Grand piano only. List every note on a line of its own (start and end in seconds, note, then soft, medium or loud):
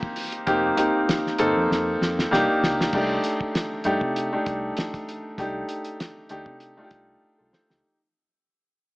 0.00 0.47 A#3 loud
0.00 0.47 C4 medium
0.00 0.47 D#4 medium
0.00 0.48 G4 loud
0.47 0.70 A#3 medium
0.47 0.70 C4 medium
0.47 0.70 D#4 medium
0.47 0.70 G4 loud
0.77 1.23 A#3 medium
0.77 1.23 C4 medium
0.77 1.23 D#4 medium
0.77 1.23 G4 medium
1.39 2.28 A#3 medium
1.39 2.28 C4 medium
1.39 2.28 D#4 medium
1.39 2.28 A4 loud
2.31 2.81 A#3 medium
2.31 2.82 D4 medium
2.31 2.82 D#4 medium
2.31 2.82 G4 loud
2.94 3.60 A3 medium
2.94 3.60 D4 medium
2.94 3.60 D#4 medium
2.94 3.60 G4 medium
3.85 4.18 A3 medium
3.85 4.18 D4 medium
3.85 4.18 D#4 medium
3.85 4.19 G4 loud
4.33 5.08 A3 medium
4.33 5.08 D4 medium
4.33 5.09 D#4 medium
4.33 5.09 G4 medium
5.38 6.05 A3 medium
5.38 6.05 D4 medium
5.38 6.05 D#4 medium
5.38 6.05 G4 medium
6.30 6.63 A3 medium
6.30 6.63 D4 medium
6.30 6.63 D#4 medium
6.30 6.64 G4 loud
6.77 7.53 A3 medium
6.77 7.22 D4 medium
6.77 7.22 D#4 medium
6.77 6.84 F4 medium
6.85 7.25 G4 medium
7.38 7.52 F4 medium
7.38 7.51 A4 medium
7.53 7.69 A4 medium
7.53 7.68 C5 medium
7.70 7.98 D#4 medium
7.70 7.98 G4 medium